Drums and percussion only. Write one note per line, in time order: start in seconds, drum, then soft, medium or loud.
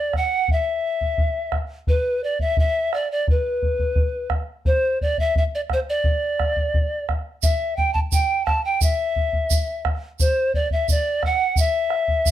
0.13 bombo rim soft
0.13 bombo low soft
0.48 bombo low medium
1.01 bombo low soft
1.18 bombo low medium
1.52 bombo rim soft
1.52 bombo low soft
1.87 bombo low medium
2.39 bombo low medium
2.57 bombo low medium
2.93 bombo rim medium
3.28 bombo low medium
3.62 bombo low medium
3.79 bombo low medium
3.95 bombo low medium
4.30 bombo rim medium
4.30 bombo low medium
4.65 bombo low medium
5.01 bombo low medium
5.18 bombo low medium
5.35 bombo low medium
5.70 bombo rim soft
5.70 bombo low soft
6.04 bombo low medium
6.39 bombo rim soft
6.39 bombo low soft
6.56 bombo low soft
6.74 bombo low medium
7.09 bombo rim soft
7.09 bombo low medium
7.43 bombo low medium
7.43 shaker medium
7.78 bombo low medium
7.95 bombo low medium
8.12 bombo low medium
8.12 shaker medium
8.47 bombo rim medium
8.47 bombo low medium
8.81 bombo low medium
8.81 shaker medium
9.16 bombo low medium
9.33 bombo low medium
9.50 bombo low medium
9.50 shaker medium
9.85 bombo rim medium
9.85 bombo low medium
10.20 bombo low medium
10.20 shaker medium
10.54 bombo low medium
10.70 bombo low medium
10.88 bombo low medium
10.88 shaker medium
11.23 bombo rim soft
11.23 bombo low soft
11.56 bombo low medium
11.56 shaker medium
11.90 bombo rim soft
12.08 bombo low soft
12.25 bombo low medium
12.25 shaker medium